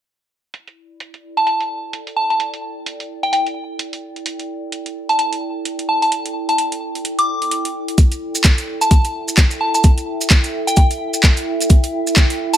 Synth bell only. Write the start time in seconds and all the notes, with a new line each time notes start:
1.37 A5
1.47 A5
2.16 A5
2.30 A5
3.23 G5
3.33 G5
5.09 A5
5.19 A5
5.89 A5
6.02 A5
6.49 A5
7.19 D6
8.81 A5
8.91 A5
9.61 A5
9.74 A5
10.67 G5
10.77 G5
12.53 A5